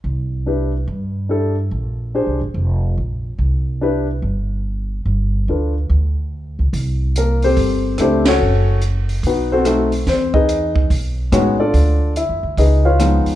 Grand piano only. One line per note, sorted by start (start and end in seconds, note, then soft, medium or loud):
0.46 0.71 D4 soft
0.46 0.71 E4 soft
0.46 0.71 G4 soft
0.46 0.71 B4 medium
1.29 1.54 D4 soft
1.29 1.54 E4 soft
1.29 1.55 G4 soft
1.29 1.55 A4 medium
2.15 2.39 D4 medium
2.15 2.39 G4 soft
2.15 2.39 G#4 soft
2.15 2.39 C5 medium
3.81 4.06 D4 medium
3.81 4.06 E4 soft
3.81 4.06 G4 medium
3.81 4.06 B4 medium
5.49 5.73 D4 soft
5.49 5.73 F4 soft
5.49 5.73 A4 soft
5.49 5.74 B4 soft
7.18 7.43 A#3 soft
7.18 7.43 A#4 medium
7.44 7.96 C4 medium
7.44 7.96 G4 medium
7.44 7.96 A4 medium
7.44 7.96 C5 medium
8.00 8.24 A3 medium
8.00 8.27 C4 soft
8.00 8.24 D4 medium
8.00 8.24 E4 medium
8.00 8.24 G4 medium
8.00 8.27 A4 soft
8.00 8.26 C5 medium
8.27 8.80 C#4 medium
8.27 8.79 F#4 medium
8.27 8.80 A4 medium
8.27 8.79 C#5 medium
9.26 9.52 B3 soft
9.26 9.51 D#4 soft
9.26 9.52 F#4 soft
9.26 9.51 B4 medium
9.52 9.65 C4 medium
9.52 9.66 F#4 medium
9.52 10.04 A4 medium
9.52 10.04 C5 medium
9.66 9.90 A3 medium
9.66 9.90 C4 medium
9.66 9.91 D#4 medium
9.66 9.91 F#4 medium
10.09 10.35 C4 medium
10.09 10.34 C5 medium
10.34 10.87 D#4 medium
10.34 10.87 G#4 medium
10.34 10.87 B4 medium
10.34 10.87 D#5 medium
11.32 11.57 G#3 medium
11.32 11.57 B3 medium
11.32 11.59 C#4 soft
11.32 11.57 D#4 medium
11.32 11.57 F#4 medium
11.32 11.59 C#5 medium
11.60 12.12 D4 medium
11.60 12.13 F4 medium
11.60 12.13 A4 medium
11.60 12.12 D5 medium
12.17 12.56 E4 medium
12.17 12.55 E5 medium
12.58 12.85 D#4 medium
12.58 12.85 G#4 medium
12.58 12.84 B4 medium
12.58 12.84 D#5 medium
12.85 13.35 F4 medium
12.85 13.35 B4 medium
12.85 13.35 C#5 medium
12.85 13.35 F5 medium
12.99 13.35 F3 medium
12.99 13.35 G#3 soft
12.99 13.35 B3 soft
12.99 13.35 D#4 medium